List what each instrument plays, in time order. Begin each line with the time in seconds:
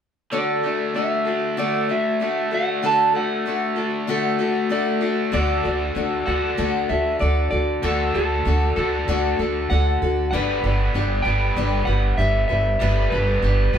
0.31 steel-string acoustic guitar D3 A3 D4 F#4 A4, clean electric guitar D5
0.63 overdriven electric guitar A3, steel-string acoustic guitar D4 F#4 A4
0.94 steel-string acoustic guitar A3 D4 F#4 A4, clean electric guitar E5
1.25 steel-string acoustic guitar D4 F#4 A4
1.57 steel-string acoustic guitar D3 A3 D4 F#4 A4, clean electric guitar D5
1.89 overdriven electric guitar D3, steel-string acoustic guitar D4 F#4 A4, clean electric guitar E5
2.20 steel-string acoustic guitar A3 D4 F#4 A4
2.51 steel-string acoustic guitar D4 F#4 A4, clean electric guitar F#5
2.83 steel-string acoustic guitar D3 A3 D4 F#4 A4, clean electric guitar A5
3.13 overdriven electric guitar A3, steel-string acoustic guitar D4 F#4 A4, clean electric guitar F#5
3.46 steel-string acoustic guitar A3 D4 F#4 A4
3.76 steel-string acoustic guitar D4 F#4 A4
4.07 steel-string acoustic guitar D3 A3 D4 F#4 A4
4.39 overdriven electric guitar D3, steel-string acoustic guitar D4 F#4 A4
4.69 steel-string acoustic guitar A3 D4 F#4 A4, clean electric guitar D5
5.01 steel-string acoustic guitar D4 F#4 A4
5.32 upright bass D2, steel-string acoustic guitar D3 A3 D4 F#4 A4, clean electric guitar D5
5.63 upright bass D2, steel-string acoustic guitar D4 F#4 A4
5.95 upright bass D2, steel-string acoustic guitar A3 D4 F#4 A4
6.26 upright bass D2, overdriven electric guitar D3, steel-string acoustic guitar D4 F#4 A4, clean electric guitar F#5
6.57 upright bass D2, steel-string acoustic guitar D3 A3 D4 F#4 A4
6.89 upright bass D2, steel-string acoustic guitar D4 F#4 A4, clean electric guitar E5
7.19 upright bass D2, steel-string acoustic guitar A3 D4 F#4 A4, clean electric guitar D5
7.51 upright bass D2, steel-string acoustic guitar D4 F#4 A4, clean electric guitar D5
7.83 upright bass D2, steel-string acoustic guitar D3 A3 D4 F#4 A4
8.14 upright bass D2, steel-string acoustic guitar D4 F#4 A4, clean electric guitar A4
8.45 upright bass D2, steel-string acoustic guitar A3 D4 F#4 A4
8.76 upright bass D2, overdriven electric guitar D3, steel-string acoustic guitar D4 F#4 A4
9.08 upright bass D2, steel-string acoustic guitar D3 A3 D4 F#4 A4
9.39 upright bass D2, steel-string acoustic guitar D4 F#4 A4
9.70 upright bass D2, steel-string acoustic guitar A3 D4 F#4 A4, clean electric guitar F#5
10.02 upright bass D2, steel-string acoustic guitar D4 F#4 A4
10.31 upright bass G1, steel-string acoustic guitar G3 D4 G4, clean electric guitar F#5
10.35 overdriven electric guitar B3, steel-string acoustic guitar B4
10.64 upright bass G1, steel-string acoustic guitar D4 G4 B4
10.94 upright bass G1, steel-string acoustic guitar G3 D4 G4 B4
11.22 upright bass G1, overdriven electric guitar B3, steel-string acoustic guitar B4, clean electric guitar G5
11.27 overdriven electric guitar G3, steel-string acoustic guitar D4 G4
11.56 upright bass G1, steel-string acoustic guitar G3 D4 G4 B4
11.85 upright bass G1, steel-string acoustic guitar G4 B4, clean electric guitar F#5
11.90 steel-string acoustic guitar D4
12.17 upright bass G1, steel-string acoustic guitar G3 D4 G4 B4, clean electric guitar E5
12.48 upright bass G1, steel-string acoustic guitar G4 B4, clean electric guitar E5
12.52 steel-string acoustic guitar D4
12.80 upright bass G1, steel-string acoustic guitar G3 D4 G4 B4, overdriven electric guitar B3
13.10 upright bass G1, steel-string acoustic guitar D4 G4 B4, clean electric guitar B4
13.42 upright bass G1, steel-string acoustic guitar G3 D4 G4 B4
13.73 upright bass G1, overdriven electric guitar B3, steel-string acoustic guitar G4 B4